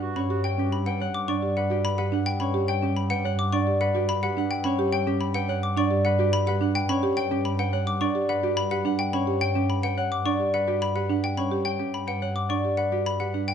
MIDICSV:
0, 0, Header, 1, 6, 480
1, 0, Start_track
1, 0, Tempo, 560748
1, 861, Time_signature, 4, 2, 24, 8
1, 11593, End_track
2, 0, Start_track
2, 0, Title_t, "Xylophone"
2, 0, Program_c, 0, 13
2, 138, Note_on_c, 0, 83, 68
2, 296, Note_off_c, 0, 83, 0
2, 378, Note_on_c, 0, 79, 81
2, 536, Note_off_c, 0, 79, 0
2, 620, Note_on_c, 0, 83, 66
2, 738, Note_on_c, 0, 78, 81
2, 777, Note_off_c, 0, 83, 0
2, 896, Note_off_c, 0, 78, 0
2, 980, Note_on_c, 0, 86, 76
2, 1097, Note_on_c, 0, 85, 69
2, 1137, Note_off_c, 0, 86, 0
2, 1256, Note_off_c, 0, 85, 0
2, 1342, Note_on_c, 0, 78, 72
2, 1497, Note_off_c, 0, 78, 0
2, 1581, Note_on_c, 0, 83, 101
2, 1696, Note_on_c, 0, 78, 67
2, 1737, Note_off_c, 0, 83, 0
2, 1855, Note_off_c, 0, 78, 0
2, 1936, Note_on_c, 0, 79, 94
2, 2054, Note_on_c, 0, 83, 75
2, 2095, Note_off_c, 0, 79, 0
2, 2215, Note_off_c, 0, 83, 0
2, 2296, Note_on_c, 0, 79, 87
2, 2455, Note_off_c, 0, 79, 0
2, 2538, Note_on_c, 0, 83, 71
2, 2654, Note_on_c, 0, 78, 94
2, 2696, Note_off_c, 0, 83, 0
2, 2815, Note_off_c, 0, 78, 0
2, 2900, Note_on_c, 0, 86, 81
2, 3017, Note_on_c, 0, 85, 79
2, 3057, Note_off_c, 0, 86, 0
2, 3176, Note_off_c, 0, 85, 0
2, 3260, Note_on_c, 0, 78, 82
2, 3416, Note_off_c, 0, 78, 0
2, 3500, Note_on_c, 0, 83, 102
2, 3620, Note_on_c, 0, 78, 83
2, 3656, Note_off_c, 0, 83, 0
2, 3777, Note_off_c, 0, 78, 0
2, 3857, Note_on_c, 0, 79, 102
2, 3972, Note_on_c, 0, 83, 80
2, 4016, Note_off_c, 0, 79, 0
2, 4134, Note_off_c, 0, 83, 0
2, 4216, Note_on_c, 0, 79, 92
2, 4375, Note_off_c, 0, 79, 0
2, 4456, Note_on_c, 0, 83, 81
2, 4575, Note_on_c, 0, 78, 86
2, 4615, Note_off_c, 0, 83, 0
2, 4735, Note_off_c, 0, 78, 0
2, 4821, Note_on_c, 0, 86, 74
2, 4942, Note_on_c, 0, 85, 81
2, 4977, Note_off_c, 0, 86, 0
2, 5097, Note_off_c, 0, 85, 0
2, 5176, Note_on_c, 0, 78, 93
2, 5335, Note_off_c, 0, 78, 0
2, 5419, Note_on_c, 0, 83, 106
2, 5540, Note_on_c, 0, 78, 81
2, 5576, Note_off_c, 0, 83, 0
2, 5697, Note_off_c, 0, 78, 0
2, 5780, Note_on_c, 0, 79, 118
2, 5900, Note_on_c, 0, 83, 98
2, 5937, Note_off_c, 0, 79, 0
2, 6057, Note_off_c, 0, 83, 0
2, 6136, Note_on_c, 0, 79, 99
2, 6295, Note_off_c, 0, 79, 0
2, 6378, Note_on_c, 0, 83, 77
2, 6498, Note_on_c, 0, 78, 89
2, 6536, Note_off_c, 0, 83, 0
2, 6656, Note_off_c, 0, 78, 0
2, 6737, Note_on_c, 0, 86, 80
2, 6855, Note_on_c, 0, 85, 83
2, 6896, Note_off_c, 0, 86, 0
2, 7015, Note_off_c, 0, 85, 0
2, 7098, Note_on_c, 0, 78, 81
2, 7256, Note_off_c, 0, 78, 0
2, 7335, Note_on_c, 0, 83, 105
2, 7457, Note_on_c, 0, 78, 83
2, 7495, Note_off_c, 0, 83, 0
2, 7616, Note_off_c, 0, 78, 0
2, 7694, Note_on_c, 0, 79, 109
2, 7818, Note_on_c, 0, 83, 80
2, 7855, Note_off_c, 0, 79, 0
2, 7976, Note_off_c, 0, 83, 0
2, 8057, Note_on_c, 0, 79, 106
2, 8216, Note_off_c, 0, 79, 0
2, 8300, Note_on_c, 0, 83, 71
2, 8418, Note_on_c, 0, 78, 89
2, 8457, Note_off_c, 0, 83, 0
2, 8576, Note_off_c, 0, 78, 0
2, 8660, Note_on_c, 0, 86, 75
2, 8779, Note_on_c, 0, 85, 82
2, 8817, Note_off_c, 0, 86, 0
2, 8936, Note_off_c, 0, 85, 0
2, 9021, Note_on_c, 0, 78, 78
2, 9177, Note_off_c, 0, 78, 0
2, 9261, Note_on_c, 0, 83, 104
2, 9379, Note_on_c, 0, 78, 68
2, 9417, Note_off_c, 0, 83, 0
2, 9536, Note_off_c, 0, 78, 0
2, 9620, Note_on_c, 0, 79, 93
2, 9737, Note_on_c, 0, 83, 74
2, 9777, Note_off_c, 0, 79, 0
2, 9895, Note_off_c, 0, 83, 0
2, 9973, Note_on_c, 0, 79, 93
2, 10134, Note_off_c, 0, 79, 0
2, 10221, Note_on_c, 0, 83, 72
2, 10338, Note_on_c, 0, 78, 82
2, 10377, Note_off_c, 0, 83, 0
2, 10496, Note_off_c, 0, 78, 0
2, 10577, Note_on_c, 0, 86, 71
2, 10699, Note_on_c, 0, 85, 67
2, 10736, Note_off_c, 0, 86, 0
2, 10856, Note_off_c, 0, 85, 0
2, 10934, Note_on_c, 0, 78, 74
2, 11095, Note_off_c, 0, 78, 0
2, 11182, Note_on_c, 0, 83, 95
2, 11299, Note_on_c, 0, 78, 69
2, 11337, Note_off_c, 0, 83, 0
2, 11456, Note_off_c, 0, 78, 0
2, 11539, Note_on_c, 0, 79, 90
2, 11593, Note_off_c, 0, 79, 0
2, 11593, End_track
3, 0, Start_track
3, 0, Title_t, "Harp"
3, 0, Program_c, 1, 46
3, 0, Note_on_c, 1, 67, 70
3, 0, Note_on_c, 1, 71, 68
3, 0, Note_on_c, 1, 73, 62
3, 0, Note_on_c, 1, 74, 71
3, 0, Note_on_c, 1, 78, 65
3, 0, Note_on_c, 1, 79, 83
3, 132, Note_off_c, 1, 73, 0
3, 143, Note_on_c, 1, 73, 63
3, 376, Note_off_c, 1, 79, 0
3, 386, Note_on_c, 1, 79, 88
3, 496, Note_off_c, 1, 67, 0
3, 506, Note_on_c, 1, 67, 73
3, 737, Note_off_c, 1, 79, 0
3, 747, Note_on_c, 1, 79, 90
3, 857, Note_off_c, 1, 78, 0
3, 867, Note_on_c, 1, 78, 98
3, 1093, Note_off_c, 1, 74, 0
3, 1103, Note_on_c, 1, 74, 75
3, 1334, Note_off_c, 1, 71, 0
3, 1344, Note_on_c, 1, 71, 70
3, 1455, Note_off_c, 1, 67, 0
3, 1465, Note_on_c, 1, 67, 69
3, 1687, Note_off_c, 1, 71, 0
3, 1697, Note_on_c, 1, 71, 69
3, 1814, Note_off_c, 1, 78, 0
3, 1825, Note_on_c, 1, 78, 69
3, 2052, Note_off_c, 1, 73, 0
3, 2063, Note_on_c, 1, 73, 74
3, 2293, Note_off_c, 1, 79, 0
3, 2303, Note_on_c, 1, 79, 101
3, 2414, Note_off_c, 1, 67, 0
3, 2424, Note_on_c, 1, 67, 71
3, 2652, Note_off_c, 1, 79, 0
3, 2662, Note_on_c, 1, 79, 87
3, 2773, Note_off_c, 1, 78, 0
3, 2784, Note_on_c, 1, 78, 104
3, 3011, Note_off_c, 1, 74, 0
3, 3022, Note_on_c, 1, 74, 87
3, 3249, Note_off_c, 1, 71, 0
3, 3259, Note_on_c, 1, 71, 80
3, 3376, Note_off_c, 1, 67, 0
3, 3386, Note_on_c, 1, 67, 70
3, 3612, Note_off_c, 1, 71, 0
3, 3623, Note_on_c, 1, 71, 78
3, 3738, Note_off_c, 1, 78, 0
3, 3748, Note_on_c, 1, 78, 81
3, 3974, Note_off_c, 1, 73, 0
3, 3985, Note_on_c, 1, 73, 86
3, 4213, Note_off_c, 1, 79, 0
3, 4224, Note_on_c, 1, 79, 106
3, 4330, Note_off_c, 1, 67, 0
3, 4341, Note_on_c, 1, 67, 89
3, 4572, Note_off_c, 1, 79, 0
3, 4582, Note_on_c, 1, 79, 107
3, 4690, Note_off_c, 1, 78, 0
3, 4701, Note_on_c, 1, 78, 93
3, 4933, Note_off_c, 1, 74, 0
3, 4944, Note_on_c, 1, 74, 88
3, 5175, Note_off_c, 1, 71, 0
3, 5185, Note_on_c, 1, 71, 87
3, 5293, Note_off_c, 1, 67, 0
3, 5303, Note_on_c, 1, 67, 79
3, 5538, Note_off_c, 1, 71, 0
3, 5549, Note_on_c, 1, 71, 83
3, 5654, Note_off_c, 1, 78, 0
3, 5665, Note_on_c, 1, 78, 74
3, 5895, Note_off_c, 1, 73, 0
3, 5905, Note_on_c, 1, 73, 85
3, 6129, Note_off_c, 1, 79, 0
3, 6139, Note_on_c, 1, 79, 103
3, 6248, Note_off_c, 1, 67, 0
3, 6258, Note_on_c, 1, 67, 86
3, 6486, Note_off_c, 1, 79, 0
3, 6497, Note_on_c, 1, 79, 98
3, 6606, Note_off_c, 1, 78, 0
3, 6616, Note_on_c, 1, 78, 98
3, 6849, Note_off_c, 1, 74, 0
3, 6859, Note_on_c, 1, 74, 86
3, 7085, Note_off_c, 1, 71, 0
3, 7095, Note_on_c, 1, 71, 88
3, 7208, Note_off_c, 1, 67, 0
3, 7218, Note_on_c, 1, 67, 79
3, 7447, Note_off_c, 1, 71, 0
3, 7457, Note_on_c, 1, 71, 83
3, 7568, Note_off_c, 1, 78, 0
3, 7578, Note_on_c, 1, 78, 82
3, 7811, Note_off_c, 1, 73, 0
3, 7821, Note_on_c, 1, 73, 88
3, 8046, Note_off_c, 1, 79, 0
3, 8056, Note_on_c, 1, 79, 99
3, 8172, Note_off_c, 1, 67, 0
3, 8182, Note_on_c, 1, 67, 79
3, 8411, Note_off_c, 1, 79, 0
3, 8422, Note_on_c, 1, 79, 95
3, 8528, Note_off_c, 1, 78, 0
3, 8539, Note_on_c, 1, 78, 103
3, 8769, Note_off_c, 1, 74, 0
3, 8779, Note_on_c, 1, 74, 82
3, 9011, Note_off_c, 1, 71, 0
3, 9021, Note_on_c, 1, 71, 80
3, 9129, Note_off_c, 1, 67, 0
3, 9139, Note_on_c, 1, 67, 77
3, 9366, Note_off_c, 1, 71, 0
3, 9377, Note_on_c, 1, 71, 73
3, 9490, Note_off_c, 1, 78, 0
3, 9500, Note_on_c, 1, 78, 71
3, 9731, Note_off_c, 1, 73, 0
3, 9741, Note_on_c, 1, 73, 70
3, 9964, Note_off_c, 1, 79, 0
3, 9975, Note_on_c, 1, 79, 81
3, 10085, Note_off_c, 1, 67, 0
3, 10095, Note_on_c, 1, 67, 67
3, 10323, Note_off_c, 1, 79, 0
3, 10333, Note_on_c, 1, 79, 83
3, 10450, Note_off_c, 1, 78, 0
3, 10460, Note_on_c, 1, 78, 94
3, 10682, Note_off_c, 1, 74, 0
3, 10693, Note_on_c, 1, 74, 76
3, 10925, Note_off_c, 1, 71, 0
3, 10936, Note_on_c, 1, 71, 70
3, 11049, Note_off_c, 1, 67, 0
3, 11059, Note_on_c, 1, 67, 65
3, 11287, Note_off_c, 1, 71, 0
3, 11297, Note_on_c, 1, 71, 68
3, 11407, Note_off_c, 1, 78, 0
3, 11418, Note_on_c, 1, 78, 67
3, 11593, Note_off_c, 1, 67, 0
3, 11593, Note_off_c, 1, 71, 0
3, 11593, Note_off_c, 1, 73, 0
3, 11593, Note_off_c, 1, 74, 0
3, 11593, Note_off_c, 1, 78, 0
3, 11593, Note_off_c, 1, 79, 0
3, 11593, End_track
4, 0, Start_track
4, 0, Title_t, "Marimba"
4, 0, Program_c, 2, 12
4, 138, Note_on_c, 2, 61, 74
4, 259, Note_on_c, 2, 67, 83
4, 296, Note_off_c, 2, 61, 0
4, 416, Note_off_c, 2, 67, 0
4, 495, Note_on_c, 2, 61, 75
4, 655, Note_off_c, 2, 61, 0
4, 741, Note_on_c, 2, 71, 62
4, 859, Note_on_c, 2, 73, 73
4, 897, Note_off_c, 2, 71, 0
4, 1016, Note_off_c, 2, 73, 0
4, 1098, Note_on_c, 2, 62, 85
4, 1219, Note_on_c, 2, 67, 65
4, 1256, Note_off_c, 2, 62, 0
4, 1376, Note_off_c, 2, 67, 0
4, 1456, Note_on_c, 2, 66, 86
4, 1615, Note_off_c, 2, 66, 0
4, 1697, Note_on_c, 2, 67, 64
4, 1816, Note_on_c, 2, 62, 97
4, 1856, Note_off_c, 2, 67, 0
4, 1975, Note_off_c, 2, 62, 0
4, 2057, Note_on_c, 2, 61, 69
4, 2175, Note_on_c, 2, 67, 104
4, 2216, Note_off_c, 2, 61, 0
4, 2335, Note_off_c, 2, 67, 0
4, 2418, Note_on_c, 2, 61, 76
4, 2576, Note_off_c, 2, 61, 0
4, 2657, Note_on_c, 2, 71, 79
4, 2778, Note_on_c, 2, 73, 90
4, 2816, Note_off_c, 2, 71, 0
4, 2936, Note_off_c, 2, 73, 0
4, 3020, Note_on_c, 2, 62, 96
4, 3141, Note_on_c, 2, 67, 73
4, 3177, Note_off_c, 2, 62, 0
4, 3297, Note_off_c, 2, 67, 0
4, 3378, Note_on_c, 2, 66, 100
4, 3536, Note_off_c, 2, 66, 0
4, 3621, Note_on_c, 2, 67, 76
4, 3740, Note_on_c, 2, 62, 95
4, 3777, Note_off_c, 2, 67, 0
4, 3897, Note_off_c, 2, 62, 0
4, 3979, Note_on_c, 2, 61, 87
4, 4099, Note_on_c, 2, 67, 111
4, 4136, Note_off_c, 2, 61, 0
4, 4256, Note_off_c, 2, 67, 0
4, 4338, Note_on_c, 2, 61, 78
4, 4496, Note_off_c, 2, 61, 0
4, 4577, Note_on_c, 2, 71, 78
4, 4696, Note_on_c, 2, 73, 91
4, 4736, Note_off_c, 2, 71, 0
4, 4855, Note_off_c, 2, 73, 0
4, 4936, Note_on_c, 2, 62, 112
4, 5055, Note_on_c, 2, 67, 82
4, 5095, Note_off_c, 2, 62, 0
4, 5215, Note_off_c, 2, 67, 0
4, 5297, Note_on_c, 2, 66, 109
4, 5456, Note_off_c, 2, 66, 0
4, 5536, Note_on_c, 2, 67, 82
4, 5657, Note_on_c, 2, 62, 96
4, 5695, Note_off_c, 2, 67, 0
4, 5816, Note_off_c, 2, 62, 0
4, 5900, Note_on_c, 2, 61, 91
4, 6018, Note_on_c, 2, 67, 119
4, 6057, Note_off_c, 2, 61, 0
4, 6176, Note_off_c, 2, 67, 0
4, 6257, Note_on_c, 2, 61, 80
4, 6416, Note_off_c, 2, 61, 0
4, 6497, Note_on_c, 2, 71, 78
4, 6616, Note_on_c, 2, 73, 92
4, 6655, Note_off_c, 2, 71, 0
4, 6775, Note_off_c, 2, 73, 0
4, 6856, Note_on_c, 2, 62, 102
4, 6977, Note_on_c, 2, 67, 87
4, 7015, Note_off_c, 2, 62, 0
4, 7136, Note_off_c, 2, 67, 0
4, 7219, Note_on_c, 2, 66, 99
4, 7376, Note_off_c, 2, 66, 0
4, 7456, Note_on_c, 2, 67, 78
4, 7575, Note_on_c, 2, 62, 96
4, 7615, Note_off_c, 2, 67, 0
4, 7735, Note_off_c, 2, 62, 0
4, 7820, Note_on_c, 2, 61, 81
4, 7937, Note_on_c, 2, 67, 98
4, 7977, Note_off_c, 2, 61, 0
4, 8096, Note_off_c, 2, 67, 0
4, 8178, Note_on_c, 2, 61, 83
4, 8336, Note_off_c, 2, 61, 0
4, 8420, Note_on_c, 2, 71, 68
4, 8540, Note_on_c, 2, 73, 84
4, 8577, Note_off_c, 2, 71, 0
4, 8697, Note_off_c, 2, 73, 0
4, 8779, Note_on_c, 2, 62, 94
4, 8899, Note_on_c, 2, 67, 70
4, 8936, Note_off_c, 2, 62, 0
4, 9056, Note_off_c, 2, 67, 0
4, 9138, Note_on_c, 2, 66, 89
4, 9296, Note_off_c, 2, 66, 0
4, 9378, Note_on_c, 2, 67, 75
4, 9498, Note_on_c, 2, 62, 98
4, 9536, Note_off_c, 2, 67, 0
4, 9656, Note_off_c, 2, 62, 0
4, 9738, Note_on_c, 2, 61, 70
4, 9857, Note_on_c, 2, 67, 99
4, 9896, Note_off_c, 2, 61, 0
4, 10016, Note_off_c, 2, 67, 0
4, 10097, Note_on_c, 2, 61, 62
4, 10255, Note_off_c, 2, 61, 0
4, 10342, Note_on_c, 2, 71, 64
4, 10460, Note_on_c, 2, 73, 75
4, 10497, Note_off_c, 2, 71, 0
4, 10617, Note_off_c, 2, 73, 0
4, 10701, Note_on_c, 2, 62, 79
4, 10824, Note_on_c, 2, 67, 70
4, 10857, Note_off_c, 2, 62, 0
4, 10978, Note_off_c, 2, 67, 0
4, 11061, Note_on_c, 2, 66, 85
4, 11217, Note_off_c, 2, 66, 0
4, 11301, Note_on_c, 2, 67, 61
4, 11421, Note_on_c, 2, 62, 73
4, 11457, Note_off_c, 2, 67, 0
4, 11577, Note_off_c, 2, 62, 0
4, 11593, End_track
5, 0, Start_track
5, 0, Title_t, "Clarinet"
5, 0, Program_c, 3, 71
5, 5, Note_on_c, 3, 66, 57
5, 176, Note_off_c, 3, 66, 0
5, 253, Note_on_c, 3, 66, 53
5, 424, Note_off_c, 3, 66, 0
5, 504, Note_on_c, 3, 66, 38
5, 674, Note_off_c, 3, 66, 0
5, 11593, End_track
6, 0, Start_track
6, 0, Title_t, "Double bass section"
6, 0, Program_c, 4, 48
6, 0, Note_on_c, 4, 43, 74
6, 11593, Note_off_c, 4, 43, 0
6, 11593, End_track
0, 0, End_of_file